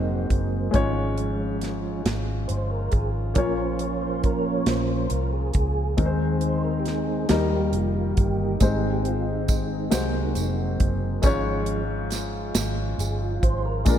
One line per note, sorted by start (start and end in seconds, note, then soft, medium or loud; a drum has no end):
0.00 0.27 F1 medium
0.00 0.70 G#2 soft
0.00 0.70 F#3 soft
0.00 0.73 F#3 medium
0.00 0.69 G#3 medium
0.00 3.33 G#3 medium
0.00 0.70 A#3 soft
0.00 0.70 C4 soft
0.00 0.72 C4 medium
0.00 0.27 D#4 medium
0.00 0.71 D#4 medium
0.00 0.74 D#4 medium
0.00 0.74 F#4 soft
0.00 0.78 C5 medium
0.30 0.70 F#1 medium
0.30 kick medium
0.30 closed hi-hat soft
0.71 2.01 G#1 medium
0.71 2.01 G#2 medium
0.71 5.94 F3 medium
0.71 3.31 G#3 medium
0.71 5.94 C#4 medium
0.71 3.32 C#4 medium
0.71 5.95 F4 medium
0.71 3.32 F4 medium
0.71 kick medium
0.71 closed hi-hat medium
0.75 2.02 F3 soft
0.75 2.03 G#3 soft
0.75 2.02 C#4 soft
0.75 3.33 C#5 medium
1.18 closed hi-hat soft
1.61 snare soft
1.61 closed hi-hat soft
2.06 2.46 G#1 medium
2.06 snare medium
2.06 closed hi-hat medium
2.48 2.90 G1 medium
2.48 2.71 C5 medium
2.48 closed hi-hat medium
2.71 2.93 A#4 medium
2.92 3.36 G#1 medium
2.92 3.11 G#4 medium
2.92 kick medium
2.92 closed hi-hat soft
3.34 4.63 A#1 medium
3.34 4.64 A#2 medium
3.34 4.66 F3 soft
3.34 5.94 A#3 medium
3.34 4.66 A#3 soft
3.34 5.96 A#3 medium
3.34 4.67 C#4 medium
3.34 5.95 C#4 medium
3.34 5.95 F4 medium
3.34 3.59 A#4 medium
3.34 5.96 C#5 medium
3.34 kick medium
3.34 closed hi-hat medium
3.57 3.80 C5 medium
3.79 4.03 C#5 medium
3.79 closed hi-hat soft
4.02 4.24 C5 medium
4.24 4.45 A#4 medium
4.24 kick medium
4.24 closed hi-hat soft
4.46 4.69 C#5 medium
4.66 5.07 A#1 medium
4.66 5.07 F3 soft
4.66 5.07 A#3 soft
4.66 5.08 C#4 soft
4.66 5.13 C5 medium
4.66 snare medium
4.66 closed hi-hat medium
5.09 5.52 C2 medium
5.09 5.31 A#4 medium
5.09 closed hi-hat medium
5.33 5.52 G#4 medium
5.53 5.95 C#2 medium
5.53 6.38 G#4 loud
5.53 kick medium
5.53 closed hi-hat soft
5.97 7.26 D#2 loud
5.97 7.25 D#3 soft
5.97 7.26 D#3 medium
5.97 7.29 D#3 medium
5.97 7.29 G#3 medium
5.97 7.26 G#3 soft
5.97 7.30 G#3 medium
5.97 7.30 C4 soft
5.97 7.26 C4 soft
5.97 7.30 C4 medium
5.97 7.29 D#4 soft
5.97 7.29 D#4 medium
5.97 6.06 A#4 soft
5.97 kick medium
5.97 closed hi-hat medium
6.06 7.34 C5 medium
6.41 6.62 C5 medium
6.41 closed hi-hat soft
6.64 6.80 A#4 medium
6.80 6.87 G4 medium
6.86 7.28 G#4 medium
6.86 snare soft
6.86 closed hi-hat soft
7.29 7.70 D#2 medium
7.29 8.57 D#3 soft
7.29 8.57 D#3 medium
7.29 9.90 D#3 medium
7.29 8.61 G3 medium
7.29 8.57 G3 soft
7.29 8.61 G3 medium
7.29 8.61 A#3 soft
7.29 8.57 A#3 medium
7.29 8.60 A#3 medium
7.29 8.61 D#4 medium
7.29 11.20 D#4 medium
7.29 7.71 G4 medium
7.29 8.62 A#4 medium
7.29 snare medium
7.29 closed hi-hat medium
7.72 8.13 F1 medium
7.72 7.96 F4 medium
7.72 closed hi-hat soft
7.97 8.12 F4 medium
8.12 8.19 F#4 soft
8.17 8.58 G1 medium
8.17 9.09 G4 medium
8.17 kick medium
8.17 closed hi-hat medium
8.60 9.89 G#1 medium
8.60 9.89 G#2 medium
8.60 9.90 D#3 soft
8.60 9.89 G#3 medium
8.60 13.99 G#3 medium
8.60 9.90 G#3 soft
8.60 9.93 C4 soft
8.60 9.92 C4 medium
8.60 9.90 C4 medium
8.60 9.90 D#4 medium
8.60 9.91 C5 medium
8.60 kick medium
8.60 closed hi-hat medium
8.60 tambourine soft
9.05 9.29 F4 medium
9.05 closed hi-hat soft
9.31 10.56 D#4 medium
9.48 kick medium
9.48 closed hi-hat soft
9.48 tambourine soft
9.91 10.33 C2 medium
9.91 11.19 C3 medium
9.91 11.23 F#3 medium
9.91 11.21 G#3 medium
9.91 11.23 C4 medium
9.91 11.23 D#4 medium
9.91 11.24 F#4 medium
9.91 11.24 C5 medium
9.91 snare medium
9.91 closed hi-hat medium
9.91 tambourine medium
9.95 11.21 F#3 soft
9.95 11.21 A#3 soft
9.95 11.22 C4 soft
10.35 10.76 F1 medium
10.35 closed hi-hat medium
10.35 tambourine soft
10.80 11.21 F#1 medium
10.80 kick medium
10.80 closed hi-hat medium
11.22 12.51 G#1 medium
11.22 12.51 G#2 medium
11.22 13.99 F3 medium
11.22 11.83 F3 soft
11.22 13.81 G#3 medium
11.22 13.82 C#4 medium
11.22 13.84 C#4 medium
11.22 13.84 F4 medium
11.22 13.83 F4 medium
11.22 13.83 C#5 medium
11.22 kick loud
11.22 closed hi-hat medium
11.22 tambourine soft
11.27 11.84 G#3 soft
11.27 11.84 C#4 medium
11.66 closed hi-hat soft
12.11 snare soft
12.11 closed hi-hat soft
12.11 tambourine soft
12.55 12.95 G#1 medium
12.55 snare medium
12.55 closed hi-hat medium
12.55 tambourine medium
12.98 13.39 G1 medium
12.98 13.22 G#4 medium
12.98 closed hi-hat medium
12.98 tambourine medium
13.23 13.45 F4 medium
13.43 13.83 G#1 medium
13.43 13.65 C5 medium
13.43 kick medium
13.43 closed hi-hat medium
13.65 13.99 A#4 medium
13.84 13.99 A#1 loud
13.84 13.99 A#2 medium
13.84 13.99 D3 soft
13.84 13.99 G#3 medium
13.84 13.99 G#3 soft
13.84 13.99 A#3 medium
13.84 13.99 C4 medium
13.84 13.99 D4 medium
13.84 13.99 F4 medium
13.84 kick loud
13.84 closed hi-hat medium
13.84 tambourine soft
13.89 13.99 A#4 medium